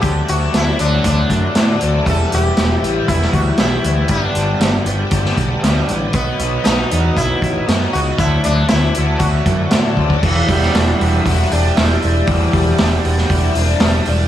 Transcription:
0.00 D2 D3 F#3 A3 D4 G4 A4 D5 F#5, kick, closed hi-hat
0.28 D2 F#4, closed hi-hat
0.54 D2 E4, snare, closed hi-hat
0.77 D2 D3 F#3 A3 D4, closed hi-hat
1.04 D2 D4, kick, closed hi-hat
1.30 F#2, kick, closed hi-hat
1.54 A2 D3 F#3 A3 D4, snare, closed hi-hat
1.81 D2, closed hi-hat
2.05 E1 E3 G3 B3 E4 B4 E5 G5, kick, closed hi-hat
2.10 A4
2.32 E1 G4, closed hi-hat
2.57 E1, snare, closed hi-hat
2.82 A1 E3 G3 B3 E4, closed hi-hat
3.08 E1 E4, kick, closed hi-hat
3.22 snare
3.33 D2 F#4, kick, closed hi-hat
3.57 B1 E3 G3 B3 E4, snare, closed hi-hat
3.62 E4
3.84 D2, closed hi-hat
4.08 G1 G2 D3 G3 D4 D5, kick, closed hi-hat
4.12 B3 D4
4.35 G1, closed hi-hat
4.60 G1, snare, closed hi-hat
4.86 G1 G2 D3 G3 B3 D4, closed hi-hat
5.11 G1, kick, closed hi-hat
5.25 snare
5.37 B1, kick, closed hi-hat
5.63 D2 G2 D3 G3 B3 D4, snare, closed hi-hat
5.88 A1, closed hi-hat
6.13 B1 B2 F#3 B3 D#4 D#5 F#5, kick, closed hi-hat
6.39 B1, closed hi-hat
6.64 B1 D#4, snare, closed hi-hat
6.91 E2 B2 F#3 B3 D#4, closed hi-hat
7.17 B1 E4, kick, closed hi-hat
7.42 A1, kick, closed hi-hat
7.67 F#2 B2 F#3 B3 D#4, snare, closed hi-hat
7.93 C#2 F#4, closed hi-hat
8.17 D2 D3 F#3 A3 E4 A4 D5, kick, closed hi-hat
8.22 D4
8.44 D2 D4, closed hi-hat
8.68 D2 E4, snare, closed hi-hat
8.94 D2 D3 F#3 A3 D4, closed hi-hat
9.19 D2 F#4, kick, closed hi-hat
9.46 F#2, kick, closed hi-hat
9.71 A2 D3 F#3 A3, snare, closed hi-hat
9.75 D4
9.97 D2, kick
10.10 kick
10.22 E1 E3, kick, crash
10.47 E1 G3 D4 E4 F#4, kick, open hi-hat
10.62 snare
10.73 E1 D4, snare, open hi-hat
10.99 E1 G3, open hi-hat
11.26 E1 E4 F#4, kick, open hi-hat
11.51 E1 D4 G4, open hi-hat
11.76 E1 G3 E4, snare, open hi-hat
12.02 E1 D4, open hi-hat
12.26 E1 E3 G3 D4 F#4, kick, open hi-hat
12.53 E1 G3, kick, open hi-hat
12.78 E1 D4, snare, open hi-hat
13.05 E1 G3, open hi-hat
13.18 snare
13.29 E1 G3 D4 E4 F#4, kick, open hi-hat
13.55 E1 D4, open hi-hat
13.80 E1 G3, snare, open hi-hat
14.05 E1 D4, open hi-hat

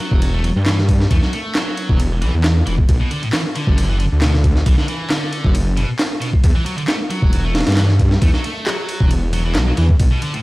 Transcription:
0.00 F#3, ride
0.11 E1, kick
0.22 ride
0.34 A3
0.44 F#3, ride
0.56 G2
0.66 E3, snare, clap, ride
0.78 snare
0.89 kick, ride
1.00 snare
1.11 E2 A3, kick, ride
1.22 F#3, snare
1.33 A3, ride
1.55 F#3, snare, clap, ride
1.77 ride
1.89 E1, kick
2.00 ride
2.22 B1 E3, ride
2.34 E2
2.44 snare, clap, ride
2.66 E1 E3, ride
2.78 kick
2.89 B1, kick, ride
3.00 B2
3.10 D3, ride
3.22 A2, ride
3.33 E3, snare, clap, ride
3.55 D3, ride
3.67 F#1, kick
3.78 ride
3.89 E3
4.00 D3, ride
4.12 D2
4.22 B2, snare, clap, ride
4.34 snare
4.44 kick, ride
4.56 snare
4.66 B1 E3, kick, ride
4.78 D3, snare
4.88 E3, ride
5.10 D3, snare, clap, ride
5.33 ride
5.44 F#1, kick
5.55 ride
5.77 B2, ride
5.99 snare, clap, ride
6.21 B2, ride
6.33 kick
6.44 E2, kick, ride
6.56 E3
6.66 F#3, ride
6.78 D3, ride
6.88 A3, snare, clap, ride
7.10 F#3, ride
7.22 E1, kick
7.33 ride
7.45 A3
7.55 F#3, snare, ride
7.61 snare, ride
7.67 G2, snare, ride
7.72 snare, ride
7.77 E3, snare, clap, ride
7.89 snare
8.00 kick, ride
8.11 snare
8.22 E2 A3, kick, ride
8.34 F#3, snare
8.44 A3, ride
8.66 F#3, snare, clap, ride
8.89 ride
9.00 E1, kick
9.11 ride
9.33 F#3, ride
9.45 E3
9.55 B1 F#3, snare, clap, ride
9.67 F#3
9.77 E2 E3, ride
9.89 kick
9.99 B1, kick, ride
10.11 B2
10.21 D3, ride
10.33 A2, ride

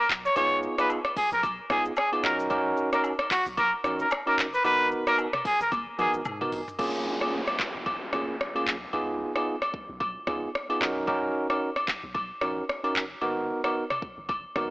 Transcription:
0.09 B1, clap, shaker
0.25 C#5, shaker
0.36 C#2 B3 D#4 F4 G#4 C#5, high agogo, shaker
0.63 shaker
0.78 B3 D#4 F4 G#4 B4, cross-stick, high agogo, shaker
0.90 low woodblock, shaker
1.05 cross-stick, high agogo
1.17 G#4, kick, open hi-hat, shaker
1.32 B1 A#4, shaker
1.43 kick, high agogo, shaker
1.70 C#2 B3 D#4 F4 G#4, kick, cross-stick, high agogo, shaker
1.85 shaker
1.97 G#4, cross-stick, low woodblock, shaker
2.12 B3 D#4 F4 G#4, high agogo
2.23 B1 C#4 D#4 F#4 A#4, clap, shaker
2.40 shaker
2.50 C#4 D#4 F#4 A#4, kick, high agogo, shaker
2.77 shaker
2.93 C#4 D#4 F#4 A#4, cross-stick, high agogo, shaker
3.04 low woodblock, shaker
3.19 cross-stick, high agogo
3.31 F#4, kick, clap, open hi-hat, shaker
3.46 B1, shaker
3.57 A#4, kick, high agogo, shaker
3.84 A#1 C#4 D#4 F#4 A#4, cross-stick, high agogo, shaker
3.99 A#4, shaker
4.11 cross-stick, low woodblock, shaker
4.26 C#4 D#4 F#4 A#4, high agogo
4.38 F#1, clap, shaker
4.54 B4, shaker
4.64 G#1 B3 D#4 F#4 A#4 B4, high agogo, shaker
4.91 shaker
5.07 B3 D#4 F#4 A#4, cross-stick, high agogo, shaker
5.18 low woodblock, shaker
5.33 cross-stick, mid tom, high agogo
5.45 G#4, kick, open hi-hat, shaker
5.61 F#1 A#4, shaker
5.72 kick, high tom, high agogo, shaker
5.98 G#1 B3 D#4 F#4 G#4 A#4, mid tom, high agogo, shaker
6.14 G#1, shaker
6.25 G#2, mid tom, low woodblock, shaker
6.41 B3 D#4 F#4 A#4, mid tom, high agogo
6.52 G#1, floor tom, open hi-hat, shaker
6.68 floor tom, shaker
6.79 F#1 A#3 C#4 F4 G#4, kick, crash, downlifter, high agogo
7.21 A#3 C#4 F4 G#4, cross-stick, high agogo
7.48 cross-stick, high agogo
7.59 kick, clap
7.75 F1
7.86 kick, high agogo
8.13 F#1 A#3 C#4 F4 G#4, cross-stick, high agogo
8.41 cross-stick
8.55 A#3 C#4 F4 G#4, high agogo
8.67 B1, clap
8.93 C#2 B3 D#4 F4 G#4, high agogo
9.35 B3 D#4 F4 G#4, cross-stick, high agogo
9.62 cross-stick, high agogo
9.74 kick
9.89 B1
10.00 kick, high agogo
10.27 C#2 B3 D#4 F4 G#4, kick, cross-stick, high agogo
10.55 cross-stick
10.69 B3 D#4 F4 G#4, high agogo
10.81 B1 C#4 D#4 F#4 A#4, clap
11.07 C#4 D#4 F#4 A#4, kick, high agogo
11.50 C#4 D#4 F#4 A#4, cross-stick, high agogo
11.76 cross-stick, high agogo
11.88 kick, clap
12.04 B1
12.15 kick, high agogo
12.41 A#1 C#4 D#4 F#4 A#4, cross-stick, high agogo
12.69 cross-stick
12.84 C#4 D#4 F#4 A#4, high agogo
12.95 F#1, clap
13.21 G#1 B3 D#4 F#4 A#4, high agogo
13.64 B3 D#4 F#4 A#4, cross-stick, high agogo
13.90 cross-stick, mid tom, high agogo
14.02 kick
14.18 F#1
14.29 kick, high agogo
14.56 G#1 B3 D#4 F#4 A#4, kick, cross-stick, high agogo

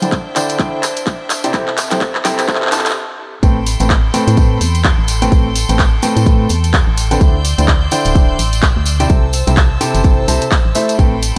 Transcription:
Already playing: D4 C5 E5 G5
0.02 D3 E4 C5 D5 G5, closed hi-hat, tambourine, high conga
0.12 kick, clap, closed hi-hat, tambourine
0.36 D3 E4 C5 D5 G5, clap, open hi-hat, tambourine
0.49 closed hi-hat, tambourine
0.59 D3 E4 C5 D5 G5, kick, clap, closed hi-hat, tambourine
0.83 clap, open hi-hat, tambourine
0.96 closed hi-hat, tambourine
1.07 kick, clap, closed hi-hat, tambourine
1.30 clap, open hi-hat, tambourine
1.44 C3 E4 C5 D5 G5, closed hi-hat, tambourine
1.53 C3 C4 E4 A4 C5 G5, kick, clap, closed hi-hat, tambourine
1.68 clap
1.78 clap, open hi-hat, tambourine
1.91 C3 E4 A4 C5 G5, clap, closed hi-hat, tambourine, high conga
2.01 kick, clap, closed hi-hat, tambourine
2.15 clap
2.25 C3 E4 A4 C5 G5, clap, open hi-hat, tambourine, high conga
2.39 clap, closed hi-hat, tambourine
2.48 C3 E4 A4 C5 G5, kick, clap, closed hi-hat, tambourine
2.55 clap
2.62 clap
2.67 clap
2.72 C3 E4 A4 C5 A5, clap, open hi-hat, tambourine
2.79 clap
2.86 clap, closed hi-hat, tambourine
2.91 clap
3.43 A1 A2 C4 A4 B4 G5 B5 C6, kick, closed hi-hat, tambourine
3.66 open hi-hat, tambourine
3.80 A1 A2 C4 A4 B4 G5, closed hi-hat, tambourine
3.90 kick, clap, closed hi-hat, tambourine
4.14 A2 C4 A4 B4 G5, open hi-hat, tambourine
4.27 A2, closed hi-hat, tambourine
4.37 A2 C4 A4 B4 G5, kick, closed hi-hat, tambourine
4.61 E2, open hi-hat, tambourine
4.75 closed hi-hat, tambourine
4.84 kick, clap, closed hi-hat, tambourine
4.98 A1
5.08 open hi-hat, tambourine
5.22 A2 C4 A4 B4 G5, closed hi-hat, tambourine
5.32 A1 A2 C4 A4 B4 G5 A5, kick, closed hi-hat, tambourine
5.56 open hi-hat, tambourine
5.69 A1 A2 C4 A4 B4 G5, closed hi-hat, tambourine
5.79 kick, clap, closed hi-hat, tambourine
6.02 A2 C4 A4 B4 G5, open hi-hat, tambourine
6.16 A2, closed hi-hat, tambourine
6.26 A2 C4 A4 B4 G5, kick, closed hi-hat, tambourine
6.49 E2, open hi-hat, tambourine
6.64 closed hi-hat, tambourine
6.74 kick, clap, closed hi-hat, tambourine
6.87 A1
6.97 open hi-hat, tambourine
7.11 D3 C4 A4 B4 G5, closed hi-hat, tambourine
7.21 D2 D3 E4 C5 D5 G5 C6 E6 G6, kick, closed hi-hat, tambourine
7.45 open hi-hat, tambourine
7.58 D2 D3 E4 C5 D5 G5, closed hi-hat, tambourine
7.68 kick, clap, closed hi-hat
7.91 D3 E4 C5 D5 G5, open hi-hat, tambourine
8.05 D1, closed hi-hat, tambourine
8.15 D3 E4 C5 D5 G5, kick, closed hi-hat, tambourine
8.39 A1, open hi-hat, tambourine
8.53 closed hi-hat, tambourine
8.62 kick, clap, closed hi-hat, tambourine
8.76 D2
8.85 open hi-hat, tambourine
9.00 C3 E4 C5 D5 G5, closed hi-hat, tambourine
9.09 C2 C3 E4 A4 C5 A5, kick, closed hi-hat, tambourine
9.33 open hi-hat, tambourine
9.47 C2 C3 E4 A4 C5 G5, closed hi-hat, tambourine
9.57 kick, clap, closed hi-hat, tambourine
9.81 C3 E4 A4 C5 G5, open hi-hat, tambourine
9.95 G1, closed hi-hat, tambourine
10.04 C3 E4 A4 C5 G5, kick, closed hi-hat, tambourine
10.28 C2 C3 E4 A4 C5 A5, open hi-hat, tambourine
10.42 closed hi-hat, tambourine
10.51 kick, clap, closed hi-hat, tambourine
10.65 A1
10.75 A3 E4 A4 C5 E5, open hi-hat, tambourine
10.89 closed hi-hat, tambourine
10.99 A1 A2 C4 A4 B4 G5 B5 C6, kick, closed hi-hat, tambourine
11.22 open hi-hat, tambourine

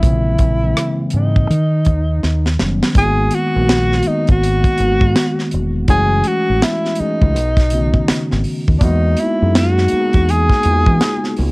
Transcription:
Already playing: E4
0.03 A#1 C3 E3 G#3 A#3 C4, kick, closed hi-hat
0.10 C#3
0.38 A#1, kick, closed hi-hat
0.63 C#3 E3 G#3 A#3 C4
0.77 cross-stick, closed hi-hat
1.10 G#2 C#3 E3 G#3, closed hi-hat
1.15 A#3 C4 D#4
1.36 kick
1.50 D#3, closed hi-hat
1.85 D#2, kick, closed hi-hat
2.23 D#2, snare
2.46 snare
2.59 F#1 D#3 F#3 G3 B3 C#4, snare
2.83 snare
2.95 G#1 D#3 G#3 A#3 B3 E4 G#4, kick, closed hi-hat
3.04 F#4
3.31 F#4, closed hi-hat
3.55 A#1 D#3 G#3 A#3 B3 F#4
3.69 snare, closed hi-hat
3.92 snare
4.03 D#3 G#3, closed hi-hat
4.07 A#3 B3 D#4 F#4, muted fingered electric bass stroke
4.27 G#1 F#4, kick, closed hi-hat
4.43 closed hi-hat
4.64 kick, closed hi-hat
4.78 G#1 D#3 G#3 A#3 B3 F#4, closed hi-hat
5.01 G#2, kick
5.16 snare, closed hi-hat
5.39 snare
5.51 E1, closed hi-hat
5.88 F#1 E3 G#3 A3 C#4 F#4 G#4, kick, closed hi-hat
6.24 F#4, closed hi-hat
6.50 A1
6.62 E4, snare, closed hi-hat
6.85 snare
6.95 E3 G#3 A3, closed hi-hat
7.00 C#4 D#4 G#4, muted fingered electric bass stroke
7.22 C#2, kick
7.36 B1, closed hi-hat
7.57 kick, snare, closed hi-hat
7.70 C#3 A3 B3 C#4 F#4, closed hi-hat
7.78 D#3
7.94 kick
8.08 muted fingered electric bass stroke, snare, closed hi-hat
8.31 G#1, snare
8.44 open hi-hat
8.68 D#2, kick
8.78 E2 F#3 A#3 D4, kick, closed hi-hat
8.82 B3 D#4 F#4
8.88 G#3
9.17 E4, closed hi-hat
9.41 F#2 G#3 A#3 B3 D#4 G#4
9.55 F#4, snare, closed hi-hat
9.78 snare
9.88 G#3 A#3, closed hi-hat
9.92 B3 D#4 F#4, muted fingered electric bass stroke
10.00 G#4
10.13 E2, kick, closed hi-hat
10.29 G#4, closed hi-hat
10.49 kick, snare
10.63 E2 G#3 A#3 B3 D#4 F4, closed hi-hat
10.73 F#4
10.86 E3, kick
11.01 snare, closed hi-hat
11.24 snare
11.36 C#2, open hi-hat

